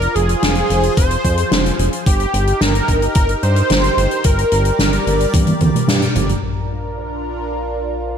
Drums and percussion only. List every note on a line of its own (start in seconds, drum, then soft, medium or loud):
0.02 closed hi-hat medium
0.16 closed hi-hat medium
0.29 closed hi-hat medium
0.43 snare loud
0.43 closed hi-hat loud
0.55 closed hi-hat medium
0.70 closed hi-hat medium
0.83 closed hi-hat medium
0.97 kick loud
0.97 closed hi-hat loud
1.11 closed hi-hat medium
1.25 kick medium
1.25 closed hi-hat medium
1.37 closed hi-hat medium
1.52 snare loud
1.52 closed hi-hat medium
1.66 closed hi-hat medium
1.79 closed hi-hat medium
1.93 closed hi-hat medium
2.06 kick loud
2.06 closed hi-hat loud
2.20 closed hi-hat medium
2.34 closed hi-hat medium
2.47 closed hi-hat medium
2.61 snare loud
2.61 closed hi-hat loud
2.75 closed hi-hat medium
2.88 kick medium
2.88 closed hi-hat medium
3.02 closed hi-hat medium
3.15 kick loud
3.15 closed hi-hat loud
3.29 closed hi-hat medium
3.43 closed hi-hat medium
3.56 closed hi-hat medium
3.70 snare loud
3.70 closed hi-hat loud
3.84 closed hi-hat medium
3.98 closed hi-hat medium
4.11 closed hi-hat medium
4.24 kick loud
4.24 closed hi-hat loud
4.38 closed hi-hat medium
4.52 closed hi-hat medium
4.65 closed hi-hat medium
4.79 snare loud
4.79 closed hi-hat loud
4.93 closed hi-hat medium
5.07 closed hi-hat medium
5.20 closed hi-hat medium
5.34 kick loud
5.34 closed hi-hat loud
5.34 high tom medium
5.47 closed hi-hat medium
5.47 high tom medium
5.60 kick medium
5.60 closed hi-hat medium
5.60 high tom medium
5.75 closed hi-hat medium
5.75 mid tom medium
5.88 snare loud
5.88 closed hi-hat loud
5.88 mid tom medium
6.02 closed hi-hat medium
6.15 closed hi-hat medium
6.15 mid tom loud
6.29 closed hi-hat medium
6.29 mid tom loud
6.42 closed hi-hat medium
6.56 closed hi-hat soft
6.70 closed hi-hat medium
6.83 closed hi-hat soft
6.97 closed hi-hat medium
7.11 closed hi-hat medium
7.25 closed hi-hat medium
7.38 closed hi-hat soft
7.51 closed hi-hat medium
7.66 closed hi-hat medium
7.94 closed hi-hat soft
8.06 closed hi-hat medium